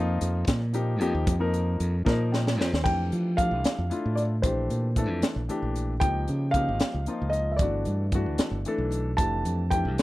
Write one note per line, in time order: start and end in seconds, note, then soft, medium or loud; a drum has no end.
0.00 0.18 F2 medium
0.00 0.59 F3 medium
0.00 0.59 A#3 medium
0.00 0.59 D#4 medium
0.00 0.60 F4 medium
0.21 0.46 F2 medium
0.21 closed hi-hat medium
0.47 1.01 A#2 medium
0.47 kick medium
0.47 snare loud
0.47 closed hi-hat medium
0.73 0.95 F3 medium
0.73 0.96 A#3 medium
0.73 0.96 D#4 medium
0.73 0.96 G4 medium
0.73 closed hi-hat medium
1.00 1.13 F2 medium
1.00 1.33 F3 medium
1.00 1.33 A#3 medium
1.00 1.33 D#4 medium
1.00 1.33 G4 loud
1.00 closed hi-hat medium
1.15 1.26 D#2 medium
1.27 1.76 F2 medium
1.27 kick loud
1.27 closed hi-hat medium
1.39 1.93 F3 medium
1.39 1.93 A#3 medium
1.39 1.93 D#4 medium
1.39 1.94 A#4 medium
1.54 closed hi-hat medium
1.80 2.04 F2 medium
1.80 closed hi-hat medium
2.05 2.60 A#2 medium
2.05 2.69 F3 medium
2.05 2.70 A#3 medium
2.05 2.70 D#4 medium
2.05 2.70 A#4 medium
2.05 kick medium
2.05 snare medium
2.32 2.57 G5 medium
2.32 snare medium
2.47 snare medium
2.58 2.72 F2 medium
2.58 2.83 C5 medium
2.58 snare medium
2.73 2.85 D#2 medium
2.73 snare medium
2.84 3.10 F2 medium
2.84 3.28 E3 medium
2.84 3.28 A3 medium
2.84 3.28 D4 soft
2.84 3.28 G4 medium
2.84 3.39 G5 medium
2.84 kick medium
2.84 crash medium
3.12 3.53 F3 medium
3.12 closed hi-hat soft
3.37 3.81 E3 medium
3.37 3.82 A3 medium
3.37 3.82 D4 medium
3.37 3.82 G4 medium
3.37 4.19 F5 medium
3.37 kick medium
3.37 closed hi-hat medium
3.51 3.63 C2 medium
3.64 snare medium
3.64 closed hi-hat medium
3.78 3.90 F2 medium
3.90 4.33 A3 medium
3.90 4.34 D4 medium
3.90 4.33 E4 medium
3.90 4.34 F4 medium
3.90 closed hi-hat medium
4.05 4.41 A2 medium
4.16 4.22 D5 medium
4.16 closed hi-hat medium
4.42 4.68 A#1 medium
4.42 4.86 E3 medium
4.42 4.87 A3 medium
4.42 4.87 D4 medium
4.42 4.87 G4 medium
4.42 5.71 C5 medium
4.42 kick medium
4.42 closed hi-hat medium
4.70 5.09 A#2 medium
4.70 closed hi-hat medium
4.96 5.39 E3 medium
4.96 5.39 A3 medium
4.96 5.40 D4 medium
4.96 5.40 A4 medium
4.96 kick medium
4.96 closed hi-hat medium
5.09 5.22 F2 medium
5.22 muted fingered electric bass stroke soft
5.22 snare loud
5.22 closed hi-hat medium
5.36 5.48 A#1 medium
5.49 5.92 E3 medium
5.49 5.92 A3 medium
5.49 5.92 D4 medium
5.49 5.93 G4 medium
5.49 closed hi-hat medium
5.62 5.99 A#1 medium
5.76 closed hi-hat soft
6.00 6.26 C#2 medium
6.00 6.44 F3 medium
6.00 6.45 A#3 medium
6.00 6.45 D#4 medium
6.00 6.45 G4 medium
6.00 6.50 G5 medium
6.00 kick medium
6.00 closed hi-hat medium
6.28 6.70 C#3 medium
6.28 closed hi-hat medium
6.51 6.97 F3 medium
6.51 7.35 F5 medium
6.51 kick medium
6.51 closed hi-hat soft
6.55 6.98 A#3 medium
6.55 6.98 D#4 medium
6.55 6.98 G4 medium
6.68 6.80 G#1 medium
6.80 muted fingered electric bass stroke soft
6.80 snare loud
6.80 closed hi-hat medium
6.94 7.06 C#2 medium
7.06 7.50 F3 medium
7.06 7.50 A#3 medium
7.06 7.50 D#4 medium
7.06 7.51 F4 medium
7.06 closed hi-hat medium
7.22 7.58 C#2 medium
7.30 7.52 D#5 medium
7.30 closed hi-hat medium
7.52 7.60 E5 soft
7.57 7.84 G1 medium
7.57 8.03 E3 medium
7.57 8.03 A3 medium
7.57 8.87 D5 medium
7.57 kick medium
7.57 closed hi-hat medium
7.61 8.03 D4 medium
7.61 8.03 F#4 medium
7.85 8.26 G2 medium
7.85 closed hi-hat medium
8.12 8.56 E3 medium
8.12 8.56 A3 medium
8.12 8.57 D4 medium
8.12 8.57 F#4 medium
8.12 kick medium
8.12 closed hi-hat medium
8.26 8.38 D2 medium
8.38 muted fingered electric bass stroke soft
8.38 snare loud
8.38 closed hi-hat medium
8.51 8.64 G1 medium
8.65 9.09 E3 medium
8.65 9.09 A3 medium
8.65 9.09 D4 medium
8.65 9.10 A4 medium
8.65 closed hi-hat medium
8.78 9.15 B1 medium
8.92 closed hi-hat medium
9.17 9.43 F1 medium
9.17 9.62 E3 medium
9.17 9.62 A3 medium
9.17 9.62 D4 medium
9.17 9.62 G4 medium
9.17 9.72 A5 medium
9.17 kick medium
9.17 closed hi-hat medium
9.45 9.86 F2 medium
9.45 closed hi-hat medium
9.70 10.02 E3 medium
9.70 10.02 A3 medium
9.70 10.02 D4 medium
9.70 10.02 G4 medium
9.70 10.02 G5 medium
9.70 kick medium
9.70 closed hi-hat medium
9.85 9.97 C2 medium
9.98 muted fingered electric bass stroke soft
9.98 closed hi-hat medium